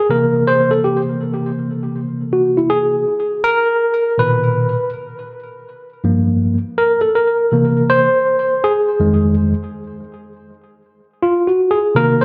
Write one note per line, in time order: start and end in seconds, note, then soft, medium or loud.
0.00 0.11 G#4 medium
0.10 3.03 C3 medium
0.10 3.03 E3 medium
0.10 3.03 A#3 medium
0.10 0.49 A#4 medium
0.47 0.72 C5 loud
0.71 0.84 A4 loud
0.84 1.01 G4 medium
2.33 2.57 F#4 medium
2.57 2.71 E4 medium
2.70 3.46 G#4 loud
3.44 4.20 A#4 loud
4.18 4.72 A#2 medium
4.18 4.71 B2 soft
4.18 4.72 D#3 soft
4.18 4.89 B4 medium
6.04 6.57 G2 medium
6.04 6.57 F3 medium
6.04 6.57 A#3 medium
6.78 7.00 A#4 medium
7.01 7.15 A4 medium
7.15 7.91 A#4 medium
7.52 8.05 C3 medium
7.52 8.05 E3 medium
7.52 8.05 A#3 medium
7.90 8.66 C5 loud
8.64 9.34 G#4 medium
9.00 9.53 F2 medium
9.00 9.53 D#3 medium
9.00 9.53 G#3 medium
11.22 11.48 F4 medium
11.47 11.73 F#4 medium
11.71 11.97 G#4 medium
11.95 12.25 C3 medium
11.95 12.25 D#3 medium
11.95 12.25 A#3 medium
11.95 12.22 A#4 loud
12.21 12.25 C5 loud